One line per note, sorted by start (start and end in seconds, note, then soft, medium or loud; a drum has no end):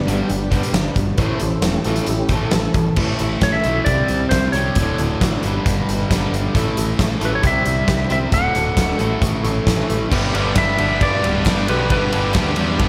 0.00 0.50 G3 medium
0.00 0.28 B3 medium
0.00 0.51 D4 medium
0.07 0.21 G1 medium
0.07 0.26 G2 medium
0.07 0.27 D3 loud
0.07 0.26 G3 soft
0.07 0.28 B3 medium
0.07 0.29 D4 medium
0.07 0.30 G4 medium
0.07 closed hi-hat medium
0.28 0.58 G1 medium
0.28 0.49 G2 medium
0.28 0.49 D3 medium
0.28 0.51 G3 medium
0.28 0.51 B3 medium
0.28 0.51 D4 medium
0.28 0.50 G4 medium
0.28 closed hi-hat medium
0.51 0.73 G2 medium
0.51 0.73 D3 medium
0.51 0.72 G3 medium
0.51 0.74 G3 medium
0.51 0.72 B3 soft
0.51 0.74 B3 medium
0.51 0.74 D4 medium
0.51 0.73 D4 medium
0.51 0.74 G4 medium
0.51 kick medium
0.51 closed hi-hat medium
0.63 closed hi-hat medium
0.73 0.88 G1 medium
0.73 0.97 G2 medium
0.73 0.97 D3 medium
0.73 0.97 G3 loud
0.73 0.97 B3 medium
0.73 0.95 D4 loud
0.73 0.94 G4 medium
0.73 snare loud
0.73 closed hi-hat medium
0.96 1.10 G1 medium
0.96 1.17 G2 medium
0.96 1.17 D3 medium
0.96 1.18 G3 medium
0.96 1.19 B3 medium
0.96 1.19 D4 medium
0.96 1.19 G4 medium
0.96 kick medium
0.96 closed hi-hat medium
1.17 1.32 A1 medium
1.17 1.41 A2 medium
1.17 1.42 E3 medium
1.17 1.41 A3 medium
1.17 1.42 C#4 medium
1.17 1.42 E4 medium
1.17 1.40 A4 medium
1.17 1.20 B4 medium
1.17 kick loud
1.17 closed hi-hat medium
1.21 1.64 C5 medium
1.40 1.55 A1 medium
1.40 1.61 A2 medium
1.40 1.61 E3 medium
1.40 2.06 E3 medium
1.40 2.06 A3 soft
1.40 1.64 C#4 medium
1.40 1.65 E4 medium
1.40 1.64 A4 medium
1.40 closed hi-hat medium
1.44 1.64 A3 soft
1.44 2.06 C#4 medium
1.62 1.76 E1 loud
1.62 1.86 A2 medium
1.62 1.87 E3 medium
1.62 1.87 A3 medium
1.62 1.87 C#4 medium
1.62 snare loud
1.62 closed hi-hat medium
1.66 1.86 E4 medium
1.66 1.87 G4 medium
1.66 1.85 A4 medium
1.84 2.00 A1 medium
1.84 2.07 A2 medium
1.84 2.07 E3 medium
1.84 2.07 C#4 medium
1.84 2.08 E4 medium
1.84 2.09 F4 medium
1.84 2.08 A4 medium
1.84 closed hi-hat medium
1.88 2.05 A3 soft
1.96 closed hi-hat medium
2.06 2.22 A1 medium
2.06 2.28 A2 medium
2.06 2.28 E3 medium
2.06 2.29 E3 medium
2.06 2.30 A3 medium
2.06 2.29 A3 soft
2.06 2.31 C#4 medium
2.06 2.29 C#4 medium
2.06 2.30 E4 medium
2.06 2.31 G4 loud
2.06 2.29 A4 medium
2.06 closed hi-hat medium
2.29 2.43 A1 medium
2.29 2.50 A2 medium
2.29 2.51 E3 loud
2.29 2.53 E4 medium
2.29 2.53 A4 medium
2.29 2.97 A4 loud
2.29 kick medium
2.29 closed hi-hat medium
2.33 2.52 A3 soft
2.33 2.52 C#4 medium
2.51 2.67 A1 medium
2.51 2.75 A2 medium
2.51 2.75 E3 medium
2.51 2.76 A3 medium
2.51 2.76 C#4 medium
2.51 2.74 E4 medium
2.51 2.73 A4 loud
2.51 snare loud
2.51 closed hi-hat medium
2.74 2.89 A1 medium
2.74 2.95 A2 medium
2.74 2.96 E3 medium
2.74 2.96 A3 soft
2.74 2.96 C#4 medium
2.74 2.96 E4 medium
2.74 2.97 A4 medium
2.74 kick medium
2.74 closed hi-hat medium
2.96 3.12 A1 medium
2.96 3.20 A2 medium
2.96 3.20 E3 medium
2.96 3.20 A3 medium
2.96 3.20 C#4 medium
2.96 3.20 E4 medium
2.96 3.19 A4 medium
2.96 kick loud
2.96 crash loud
3.19 3.35 A1 medium
3.19 3.41 C#4 medium
3.19 3.41 E4 medium
3.19 3.42 A4 medium
3.19 closed hi-hat medium
3.23 3.41 A3 medium
3.41 3.57 A1 medium
3.41 3.64 A2 medium
3.41 3.64 E3 medium
3.41 3.65 A3 medium
3.41 3.65 C#4 medium
3.41 3.63 E4 medium
3.41 3.62 A4 medium
3.41 3.55 C#5 medium
3.41 kick loud
3.41 snare loud
3.41 closed hi-hat medium
3.52 3.88 E5 loud
3.64 3.80 B1 medium
3.64 3.87 E3 medium
3.64 3.85 A3 soft
3.64 3.87 C#4 soft
3.64 3.87 E4 soft
3.64 3.87 A4 medium
3.64 closed hi-hat medium
3.68 3.87 A2 medium
3.85 4.02 C2 medium
3.85 4.53 C3 medium
3.85 4.09 G3 medium
3.85 4.10 C4 medium
3.85 4.10 E4 medium
3.85 4.29 D5 loud
3.85 kick loud
3.85 closed hi-hat medium
3.89 4.08 C5 medium
4.08 4.25 C2 medium
4.08 4.32 C4 soft
4.08 4.33 E4 soft
4.08 4.32 C5 medium
4.08 closed hi-hat medium
4.29 4.47 C2 medium
4.29 4.54 C3 medium
4.29 4.55 G3 medium
4.29 4.52 C5 medium
4.29 kick loud
4.29 snare loud
4.29 closed hi-hat loud
4.33 4.55 C4 medium
4.33 4.54 E4 medium
4.33 4.52 C5 medium
4.52 4.68 C2 medium
4.52 4.77 E4 soft
4.52 4.76 C5 medium
4.52 5.83 C#5 medium
4.52 closed hi-hat medium
4.57 4.76 C3 medium
4.57 4.77 G3 medium
4.57 4.78 C4 soft
4.75 4.91 D1 medium
4.75 5.42 D2 medium
4.75 5.43 A2 medium
4.75 4.99 D3 medium
4.75 4.99 A3 medium
4.75 5.00 D4 medium
4.75 5.00 F#4 medium
4.75 kick loud
4.75 closed hi-hat loud
4.80 4.99 A4 medium
4.98 5.14 D1 medium
4.98 5.22 F#4 soft
4.98 5.22 A4 medium
4.98 closed hi-hat medium
5.03 5.22 D4 soft
5.21 5.36 A1 medium
5.21 5.44 D3 medium
5.21 5.44 A3 loud
5.21 5.44 D4 medium
5.21 5.45 F#4 loud
5.21 5.45 A4 loud
5.21 kick loud
5.21 snare loud
5.21 closed hi-hat loud
5.43 5.58 G1 medium
5.43 6.09 G2 loud
5.43 6.10 D3 medium
5.43 5.67 G4 medium
5.43 5.67 B4 medium
5.43 closed hi-hat medium
5.47 5.66 G3 soft
5.47 5.67 D4 medium
5.66 5.81 G1 medium
5.66 5.89 G3 medium
5.66 5.89 D4 medium
5.66 5.89 G4 medium
5.66 5.89 B4 medium
5.66 kick loud
5.66 closed hi-hat loud
5.89 6.03 G1 medium
5.89 6.11 D4 medium
5.89 6.11 G4 medium
5.89 6.11 B4 medium
5.89 closed hi-hat medium
5.93 6.11 G3 medium
6.10 6.25 G1 medium
6.10 6.33 G2 medium
6.10 6.33 D3 medium
6.10 6.34 G3 medium
6.10 6.33 D4 loud
6.10 6.34 G4 medium
6.10 6.32 B4 loud
6.10 kick loud
6.10 snare loud
6.10 closed hi-hat loud
6.32 6.47 G1 medium
6.32 6.56 D4 medium
6.32 6.56 G4 medium
6.32 6.55 B4 medium
6.32 closed hi-hat medium
6.37 6.56 G3 medium
6.55 6.70 A1 medium
6.55 6.78 A2 medium
6.55 6.78 E3 medium
6.55 7.43 A3 medium
6.55 6.78 A3 medium
6.55 6.78 C#4 medium
6.55 7.43 E4 medium
6.55 6.77 E4 loud
6.55 6.77 A4 loud
6.55 7.43 C#5 medium
6.55 kick loud
6.55 closed hi-hat medium
6.77 6.92 A1 medium
6.77 7.00 A3 medium
6.77 7.00 C#4 medium
6.77 7.00 E4 medium
6.77 7.00 A4 medium
6.77 closed hi-hat medium
6.99 7.14 A1 loud
6.99 7.22 A2 medium
6.99 7.23 E3 medium
6.99 7.23 A3 medium
6.99 7.23 C#4 medium
6.99 7.23 E4 medium
6.99 7.21 A4 loud
6.99 kick loud
6.99 snare loud
6.99 closed hi-hat loud
7.20 7.36 A1 medium
7.20 7.42 A2 medium
7.20 7.43 E3 medium
7.20 7.42 A3 medium
7.20 7.45 E4 medium
7.20 7.45 A4 medium
7.20 closed hi-hat medium
7.25 7.44 A3 soft
7.25 7.45 C#4 medium
7.25 7.35 B4 medium
7.35 7.45 C#5 medium
7.43 7.58 C2 medium
7.43 8.09 C3 medium
7.43 8.32 G3 medium
7.43 7.67 G3 medium
7.43 7.67 C4 medium
7.43 8.32 E4 medium
7.43 8.32 C5 medium
7.43 kick loud
7.43 closed hi-hat medium
7.47 7.67 E4 medium
7.47 7.66 C5 medium
7.47 8.11 E5 loud
7.66 7.81 C2 medium
7.66 7.87 C4 soft
7.66 7.88 E4 medium
7.66 7.89 C5 medium
7.66 closed hi-hat medium
7.88 8.03 C2 medium
7.88 8.10 C3 medium
7.88 8.11 G3 medium
7.88 8.11 C4 medium
7.88 8.10 E4 medium
7.88 8.09 C5 loud
7.88 kick loud
7.88 snare loud
7.88 closed hi-hat medium
8.10 8.26 C2 medium
8.10 8.32 C3 medium
8.10 8.32 G3 medium
8.10 8.34 C4 soft
8.10 8.34 E4 medium
8.10 8.33 C5 medium
8.10 8.18 E5 medium
8.10 closed hi-hat medium
8.32 8.47 D1 medium
8.32 8.97 D2 loud
8.32 8.97 A2 loud
8.32 8.55 D3 medium
8.32 8.97 A3 medium
8.32 8.56 A3 medium
8.32 8.56 D4 medium
8.32 8.99 F#4 medium
8.32 8.55 F#4 medium
8.32 8.54 A4 medium
8.32 8.99 D5 medium
8.32 9.63 F#5 loud
8.32 kick loud
8.32 closed hi-hat loud
8.55 8.71 D1 medium
8.55 8.76 D4 soft
8.55 8.76 F#4 medium
8.55 8.78 A4 medium
8.55 closed hi-hat medium
8.77 8.92 D1 loud
8.77 9.00 D3 medium
8.77 8.99 A3 medium
8.77 9.00 D4 medium
8.77 8.98 F#4 medium
8.77 8.96 A4 medium
8.77 kick loud
8.77 snare loud
8.77 closed hi-hat loud
8.98 9.15 A1 medium
8.98 9.63 A2 medium
8.98 9.65 E3 loud
8.98 10.09 A3 medium
8.98 9.19 A3 soft
8.98 9.20 C#4 medium
8.98 10.09 E4 medium
8.98 9.21 E4 medium
8.98 9.21 A4 medium
8.98 10.09 C#5 medium
8.98 closed hi-hat medium
9.20 9.37 A1 medium
9.20 9.43 A3 medium
9.20 9.44 C#4 medium
9.20 9.44 E4 medium
9.20 9.43 A4 medium
9.20 kick loud
9.20 closed hi-hat loud
9.43 9.59 A1 medium
9.43 9.67 A3 medium
9.43 9.68 C#4 medium
9.43 9.67 E4 medium
9.43 9.67 A4 medium
9.43 closed hi-hat medium
9.67 9.82 A1 medium
9.67 9.89 A2 medium
9.67 9.90 E3 medium
9.67 9.90 A3 loud
9.67 9.90 C#4 loud
9.67 9.89 E4 loud
9.67 9.88 A4 medium
9.67 kick loud
9.67 snare loud
9.67 closed hi-hat loud
9.89 10.05 A1 medium
9.89 10.11 A3 medium
9.89 10.12 C#4 medium
9.89 10.12 E4 medium
9.89 10.11 A4 medium
9.89 closed hi-hat medium
10.10 10.33 G1 medium
10.10 10.33 G2 medium
10.10 10.34 D3 loud
10.10 10.34 G3 loud
10.10 12.88 B3 medium
10.10 10.34 B3 medium
10.10 10.34 D4 medium
10.10 12.88 G4 medium
10.10 10.33 G4 loud
10.10 10.33 B4 loud
10.10 12.88 D5 medium
10.10 kick loud
10.10 crash loud
10.33 10.55 G1 medium
10.33 10.57 G2 medium
10.33 10.56 D3 medium
10.33 10.56 G3 medium
10.33 10.56 B3 medium
10.33 10.57 D4 medium
10.33 10.57 G4 medium
10.33 10.56 B4 medium
10.33 ride medium
10.55 10.77 G1 medium
10.55 10.78 G2 medium
10.55 10.79 D3 medium
10.55 10.79 G3 medium
10.55 10.79 B3 medium
10.55 10.79 D4 medium
10.55 10.77 G4 medium
10.55 10.78 B4 medium
10.55 11.03 E5 loud
10.55 kick loud
10.55 snare loud
10.55 clap loud
10.55 ride loud
10.77 11.00 G1 medium
10.77 11.00 G2 loud
10.77 11.01 D3 loud
10.77 11.01 B3 soft
10.77 11.02 D4 medium
10.77 11.01 G4 medium
10.77 11.01 B4 medium
10.77 ride medium
10.82 11.00 G3 soft
11.00 11.45 G2 loud
11.00 11.22 G2 medium
11.00 11.23 G2 medium
11.00 11.45 D3 loud
11.00 11.23 D3 medium
11.00 11.23 G3 medium
11.00 11.24 B3 medium
11.00 11.24 D4 medium
11.00 11.22 G4 loud
11.00 11.71 D5 loud
11.00 kick loud
11.00 ride loud
11.05 11.22 B4 medium
11.23 11.45 D1 medium
11.23 11.45 G2 medium
11.23 11.46 D3 medium
11.23 11.47 G3 soft
11.23 11.47 B3 medium
11.23 11.46 D4 medium
11.23 11.47 G4 medium
11.23 11.46 B4 medium
11.23 ride medium
11.45 11.67 G1 medium
11.45 11.69 G2 medium
11.45 11.69 D3 medium
11.45 11.69 G3 medium
11.45 11.68 B3 medium
11.45 11.67 D4 loud
11.45 11.92 G4 medium
11.45 kick loud
11.45 snare loud
11.45 clap medium
11.45 ride loud
11.49 11.66 B4 medium
11.57 snare soft
11.67 11.90 B1 medium
11.67 11.89 G2 medium
11.67 11.89 D3 medium
11.67 11.90 G3 soft
11.67 11.91 B3 medium
11.67 11.91 D4 medium
11.67 11.90 B4 medium
11.67 11.89 B4 medium
11.67 ride medium
11.90 12.12 G1 loud
11.90 12.13 G2 medium
11.90 12.13 D3 medium
11.90 12.13 G3 medium
11.90 12.13 B3 medium
11.90 12.12 D4 medium
11.90 12.10 G4 loud
11.90 12.77 B4 medium
11.90 12.11 B4 medium
11.90 kick loud
11.90 ride loud
12.12 12.34 G1 loud
12.12 12.34 G2 medium
12.12 12.35 D3 loud
12.12 12.35 G3 soft
12.12 12.35 B3 medium
12.12 12.35 D4 medium
12.12 12.36 G4 medium
12.12 12.35 B4 medium
12.12 ride medium
12.34 12.56 D2 loud
12.34 12.57 G2 medium
12.34 12.58 D3 medium
12.34 12.58 G3 medium
12.34 12.58 B3 medium
12.34 12.57 D4 medium
12.34 12.56 G4 medium
12.34 12.56 B4 medium
12.34 kick loud
12.34 snare loud
12.34 clap medium
12.34 ride loud
12.56 12.79 E2 medium
12.56 12.79 G2 medium
12.56 12.79 D3 loud
12.56 12.80 B3 medium
12.56 12.80 D4 medium
12.56 12.81 G4 medium
12.56 12.79 B4 medium
12.56 ride medium
12.61 12.79 G3 medium
12.79 12.88 G1 loud
12.79 12.88 G2 medium
12.79 12.88 D3 loud
12.79 12.88 G3 medium
12.79 12.88 B3 medium
12.79 12.88 D4 medium
12.79 12.88 G4 loud
12.79 kick loud
12.79 ride loud
12.83 12.88 B4 medium